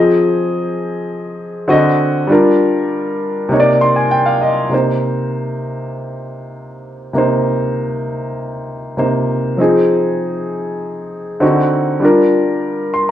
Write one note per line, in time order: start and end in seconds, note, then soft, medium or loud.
0.00 1.64 F3 medium
0.00 1.65 C4 medium
0.00 1.66 G#4 medium
0.00 1.67 D#5 medium
1.68 2.29 D3 medium
1.68 2.29 C4 medium
1.68 2.30 F#4 medium
1.68 2.30 D#5 medium
2.27 3.47 G3 medium
2.27 3.48 D4 medium
2.27 3.49 F4 medium
2.32 3.50 A#4 medium
3.49 4.68 C3 medium
3.49 4.70 A#3 medium
3.49 4.70 D#4 medium
3.53 3.59 C#5 medium
3.60 4.74 D5 medium
3.81 3.95 C6 medium
3.96 4.10 G#5 medium
4.11 4.26 G5 medium
4.26 4.40 F5 medium
4.41 4.70 D#5 medium
4.69 7.10 C3 medium
4.69 7.11 A#3 soft
4.69 7.12 D#4 soft
4.74 7.12 C5 medium
7.13 8.93 C3 medium
7.13 8.94 A#3 medium
7.13 8.95 D#4 medium
7.18 8.96 C5 medium
8.97 9.58 C3 soft
8.97 9.59 A#3 soft
8.97 9.58 D#4 soft
8.97 9.60 C5 medium
9.57 11.37 F3 medium
9.57 11.38 C4 medium
9.57 11.39 D#4 medium
9.61 11.39 G#4 medium
11.40 12.02 D3 medium
11.40 12.02 C4 medium
11.40 12.02 D#4 medium
11.40 12.03 F#4 medium
12.00 13.11 G3 medium
12.00 13.11 D4 medium
12.00 13.11 F4 medium
12.05 13.11 A#4 medium
12.94 13.08 C6 medium